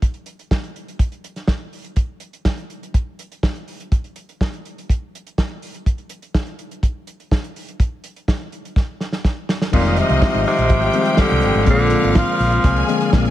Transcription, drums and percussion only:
0.02 kick medium
0.02 closed hi-hat medium
0.14 closed hi-hat soft
0.26 closed hi-hat medium
0.39 closed hi-hat soft
0.51 kick loud
0.51 snare loud
0.64 closed hi-hat soft
0.76 closed hi-hat soft
0.88 closed hi-hat soft
0.99 kick loud
0.99 closed hi-hat medium
1.12 closed hi-hat soft
1.24 closed hi-hat medium
1.36 snare soft
1.36 closed hi-hat soft
1.47 kick loud
1.47 snare medium
1.73 open hi-hat medium
1.84 closed hi-hat soft
1.96 kick medium
1.96 closed hi-hat medium
2.20 closed hi-hat medium
2.33 closed hi-hat soft
2.45 kick loud
2.45 snare loud
2.58 closed hi-hat soft
2.70 closed hi-hat soft
2.83 closed hi-hat soft
2.94 kick loud
2.94 closed hi-hat medium
3.19 closed hi-hat medium
3.32 closed hi-hat soft
3.43 kick loud
3.43 snare loud
3.56 closed hi-hat soft
3.68 open hi-hat medium
3.80 closed hi-hat soft
3.92 kick loud
3.92 closed hi-hat medium
4.04 closed hi-hat soft
4.16 closed hi-hat medium
4.29 closed hi-hat soft
4.41 kick medium
4.41 snare medium
4.53 closed hi-hat soft
4.65 closed hi-hat soft
4.78 closed hi-hat soft
4.89 kick loud
4.89 closed hi-hat medium
5.15 closed hi-hat medium
5.27 closed hi-hat soft
5.38 kick loud
5.38 snare loud
5.62 open hi-hat medium
5.74 closed hi-hat soft
5.86 kick medium
5.86 closed hi-hat medium
5.98 closed hi-hat soft
6.09 closed hi-hat medium
6.22 closed hi-hat soft
6.34 kick loud
6.34 snare loud
6.46 closed hi-hat soft
6.59 closed hi-hat soft
6.71 closed hi-hat soft
6.83 kick loud
6.83 closed hi-hat medium
7.07 closed hi-hat medium
7.20 closed hi-hat soft
7.31 kick medium
7.31 snare medium
7.44 closed hi-hat soft
7.56 open hi-hat medium
7.69 closed hi-hat soft
7.80 kick loud
7.80 closed hi-hat medium
8.04 closed hi-hat medium
8.16 closed hi-hat soft
8.28 kick medium
8.28 snare loud
8.52 closed hi-hat soft
8.65 closed hi-hat soft
8.76 kick loud
8.76 snare soft
9.01 snare medium
9.12 snare medium
9.24 kick medium
9.24 snare medium
9.49 snare medium
9.62 snare medium
9.73 kick loud
9.73 crash loud
9.85 closed hi-hat soft
9.97 closed hi-hat medium
10.09 closed hi-hat soft
10.22 kick loud
10.22 snare loud
10.34 closed hi-hat soft
10.46 open hi-hat medium
10.58 closed hi-hat medium
10.69 kick loud
10.69 closed hi-hat medium
10.82 closed hi-hat soft
10.93 closed hi-hat medium
11.05 closed hi-hat soft
11.17 kick loud
11.17 snare loud
11.30 closed hi-hat soft
11.42 closed hi-hat medium
11.54 closed hi-hat soft
11.66 kick loud
11.66 closed hi-hat medium
11.79 closed hi-hat soft
11.90 closed hi-hat medium
12.03 closed hi-hat soft
12.15 kick loud
12.15 snare loud
12.39 open hi-hat medium
12.52 closed hi-hat medium
12.64 kick loud
12.64 closed hi-hat medium
12.76 closed hi-hat soft
12.89 closed hi-hat medium
13.01 snare soft
13.01 closed hi-hat soft
13.13 kick loud
13.13 snare loud
13.25 closed hi-hat soft

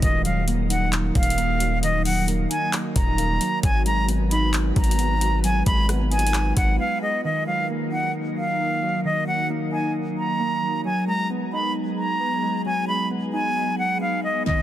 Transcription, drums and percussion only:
0.02 kick loud
0.02 closed hi-hat medium
0.25 closed hi-hat medium
0.48 closed hi-hat medium
0.70 closed hi-hat medium
0.93 clap loud
0.93 closed hi-hat medium
1.15 kick loud
1.15 closed hi-hat soft
1.23 closed hi-hat medium
1.30 closed hi-hat medium
1.38 closed hi-hat medium
1.60 closed hi-hat medium
1.83 closed hi-hat medium
2.05 open hi-hat medium
2.28 closed hi-hat medium
2.51 closed hi-hat medium
2.73 clap loud
2.73 closed hi-hat medium
2.96 kick loud
2.96 closed hi-hat medium
3.18 closed hi-hat medium
3.41 closed hi-hat medium
3.63 kick loud
3.63 closed hi-hat medium
3.86 closed hi-hat medium
4.09 closed hi-hat medium
4.31 closed hi-hat medium
4.54 clap loud
4.54 closed hi-hat medium
4.76 kick loud
4.76 closed hi-hat soft
4.84 closed hi-hat medium
4.91 closed hi-hat medium
4.99 closed hi-hat medium
5.21 closed hi-hat medium
5.44 closed hi-hat medium
5.66 kick loud
5.66 closed hi-hat medium
5.89 cross-stick medium
5.89 closed hi-hat medium
6.12 closed hi-hat soft
6.19 closed hi-hat medium
6.27 closed hi-hat medium
6.34 clap loud
6.34 closed hi-hat medium
6.57 kick loud
6.57 closed hi-hat medium

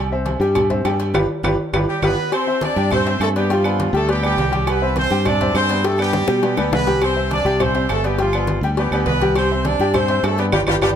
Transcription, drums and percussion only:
0.12 high conga soft
0.26 cowbell medium
0.26 high conga medium
0.26 low timbale medium
0.26 low agogo medium
0.41 high conga soft
0.41 low agogo medium
0.55 cowbell loud
0.55 high conga soft
0.55 low conga medium
0.55 low agogo loud
0.55 claves medium
0.70 cowbell medium
0.70 high conga soft
0.70 low conga medium
0.85 cowbell medium
0.85 high conga soft
0.85 low timbale medium
0.85 low agogo loud
0.85 claves medium
1.00 cowbell medium
1.00 high conga soft
1.00 low agogo medium
1.14 cowbell loud
1.14 high conga loud
1.14 high timbale loud
1.14 claves medium
1.43 cowbell loud
1.43 high conga loud
1.43 high timbale loud
1.43 claves loud
1.73 cowbell loud
1.73 high conga loud
1.73 high timbale loud
1.73 claves loud
2.02 cowbell medium
2.02 high conga medium
2.02 high timbale loud
2.02 claves medium
2.32 cowbell loud
2.32 high conga soft
2.32 low agogo loud
2.32 claves medium
2.47 high conga soft
2.61 cowbell medium
2.61 high conga loud
2.61 low timbale medium
2.61 low agogo medium
2.76 high conga soft
2.76 low agogo medium
2.90 cowbell loud
2.90 high conga soft
2.90 low conga medium
2.90 low agogo loud
2.90 claves medium
3.07 cowbell medium
3.07 high conga soft
3.21 cowbell medium
3.21 high conga soft
3.21 low timbale medium
3.21 low agogo loud
3.21 claves medium
3.35 cowbell medium
3.35 high conga soft
3.35 low agogo medium
3.50 cowbell loud
3.50 high conga soft
3.50 low agogo medium
3.64 high conga soft
3.64 low agogo loud
3.64 claves medium
3.80 cowbell medium
3.80 high conga loud
3.80 low timbale medium
3.94 high conga soft
3.94 low agogo medium
4.09 cowbell loud
4.09 high conga soft
4.09 low agogo medium
4.23 high conga soft
4.23 low agogo loud
4.23 claves medium
4.37 cowbell medium
4.37 high conga medium
4.37 low timbale medium
4.53 cowbell medium
4.53 high conga medium
4.53 low agogo medium
4.67 cowbell loud
4.67 high conga soft
4.67 low agogo loud
4.67 claves medium
4.82 high conga soft
4.96 cowbell medium
4.96 high conga loud
4.96 low timbale medium
4.96 low agogo loud
5.10 low agogo medium
5.25 cowbell loud
5.25 high conga soft
5.25 low conga medium
5.25 low agogo loud
5.25 claves medium
5.41 cowbell medium
5.41 high conga soft
5.41 low conga medium
5.55 cowbell medium
5.55 high conga soft
5.55 low timbale medium
5.55 low agogo loud
5.55 claves medium
5.69 cowbell medium
5.69 high conga soft
5.69 low agogo medium
5.84 cowbell loud
5.84 high bongo medium
5.84 high conga soft
5.84 low agogo medium
5.98 high conga soft
5.98 low agogo loud
5.98 claves medium
6.13 cowbell medium
6.13 low bongo medium
6.13 high conga loud
6.13 low timbale medium
6.28 low bongo loud
6.28 low agogo medium
6.43 cowbell loud
6.43 low bongo medium
6.43 high conga soft
6.43 low agogo medium
6.57 low bongo medium
6.57 high conga soft
6.57 low agogo loud
6.57 claves medium
6.73 cowbell medium
6.73 low bongo loud
6.73 high conga medium
6.73 low timbale medium
6.87 cowbell medium
6.87 low bongo medium
6.87 high conga medium
6.87 low agogo medium
7.02 cowbell loud
7.02 high conga soft
7.02 low agogo loud
7.02 claves medium
7.16 high conga soft
7.31 cowbell medium
7.31 high conga loud
7.31 low timbale medium
7.31 low agogo medium
7.46 low agogo medium
7.60 cowbell loud
7.60 high conga soft
7.60 low conga medium
7.60 low agogo loud
7.60 claves medium
7.75 cowbell medium
7.89 cowbell medium
7.89 high conga soft
7.89 low timbale medium
7.89 low agogo loud
7.89 claves medium
8.04 cowbell medium
8.04 high conga soft
8.04 low agogo medium
8.19 cowbell loud
8.19 high conga soft
8.19 low agogo medium
8.33 high conga soft
8.33 low agogo loud
8.33 claves medium
8.47 cowbell medium
8.47 high conga loud
8.47 low timbale medium
8.62 high conga soft
8.62 low agogo medium
8.77 cowbell loud
8.77 high conga soft
8.77 low agogo medium
8.92 high conga soft
8.92 low agogo loud
8.92 claves medium
9.06 cowbell medium
9.06 high conga medium
9.06 low timbale medium
9.20 cowbell medium
9.20 high conga medium
9.20 low agogo medium
9.35 cowbell loud
9.35 high conga soft
9.35 low agogo loud
9.35 claves medium
9.51 high conga soft
9.65 cowbell medium
9.65 high conga loud
9.65 low timbale medium
9.65 low agogo loud
9.80 low agogo medium
9.94 cowbell loud
9.94 high conga soft
9.94 low conga medium
9.94 low agogo loud
9.94 claves medium
10.08 cowbell medium
10.08 high conga soft
10.24 cowbell medium
10.24 high conga soft
10.24 low timbale medium
10.24 low agogo loud
10.24 claves medium
10.38 cowbell medium
10.38 high conga soft
10.38 low agogo medium
10.52 cowbell loud
10.52 high conga loud
10.52 high timbale loud
10.52 claves loud
10.67 cowbell loud
10.67 high conga loud
10.67 high timbale loud
10.67 claves loud
10.82 cowbell loud
10.82 high conga loud
10.82 high timbale loud
10.82 claves loud

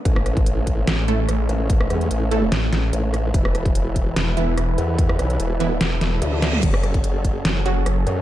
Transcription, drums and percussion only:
0.05 kick loud
0.05 closed hi-hat medium
0.16 cross-stick medium
0.26 cross-stick soft
0.26 closed hi-hat soft
0.37 kick loud
0.37 closed hi-hat soft
0.46 closed hi-hat medium
0.67 kick medium
0.67 closed hi-hat medium
0.87 snare loud
0.87 closed hi-hat medium
1.08 closed hi-hat medium
1.29 cross-stick medium
1.29 closed hi-hat medium
1.49 closed hi-hat medium
1.70 kick loud
1.70 closed hi-hat medium
1.81 cross-stick medium
1.90 cross-stick soft
1.90 closed hi-hat soft
2.01 closed hi-hat soft
2.11 closed hi-hat medium
2.31 closed hi-hat medium
2.52 snare loud
2.52 closed hi-hat medium
2.73 snare medium
2.73 closed hi-hat soft
2.93 closed hi-hat medium
3.14 cross-stick medium
3.14 closed hi-hat medium
3.34 kick loud
3.34 closed hi-hat medium
3.45 cross-stick medium
3.55 cross-stick medium
3.55 closed hi-hat medium
3.66 kick loud
3.66 closed hi-hat soft
3.75 closed hi-hat medium
3.96 kick medium
3.96 closed hi-hat medium
4.16 snare loud
4.16 closed hi-hat medium
4.37 closed hi-hat medium
4.58 cross-stick medium
4.58 closed hi-hat medium
4.78 closed hi-hat medium
4.98 kick loud
4.98 closed hi-hat medium
5.09 cross-stick medium
5.19 cross-stick medium
5.19 closed hi-hat medium
5.30 closed hi-hat soft
5.40 closed hi-hat medium
5.60 closed hi-hat medium
5.81 snare loud
5.81 closed hi-hat medium
6.01 snare medium
6.01 closed hi-hat medium
6.22 closed hi-hat medium
6.22 high tom medium
6.33 high tom medium
6.42 cross-stick medium
6.42 snare medium
6.42 closed hi-hat medium
6.53 mid tom medium
6.63 kick loud
6.63 closed hi-hat medium
6.63 crash medium
6.74 cross-stick medium
6.83 cross-stick medium
6.83 closed hi-hat medium
6.94 kick loud
6.94 closed hi-hat soft
7.04 closed hi-hat medium
7.24 kick medium
7.24 closed hi-hat medium
7.45 snare loud
7.45 closed hi-hat medium
7.66 closed hi-hat medium
7.86 cross-stick medium
7.86 closed hi-hat medium
8.07 closed hi-hat medium

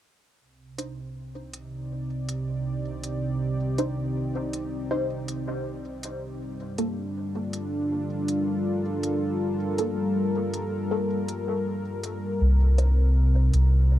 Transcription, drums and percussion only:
0.79 closed hi-hat soft
1.54 closed hi-hat soft
2.29 closed hi-hat soft
3.04 closed hi-hat soft
3.78 closed hi-hat soft
4.53 closed hi-hat soft
5.28 closed hi-hat soft
6.03 closed hi-hat soft
6.78 closed hi-hat soft
7.53 closed hi-hat soft
8.28 closed hi-hat soft
9.03 closed hi-hat soft
9.78 closed hi-hat soft
10.54 closed hi-hat soft
11.28 closed hi-hat soft
12.04 closed hi-hat soft
12.78 closed hi-hat soft
13.54 closed hi-hat soft

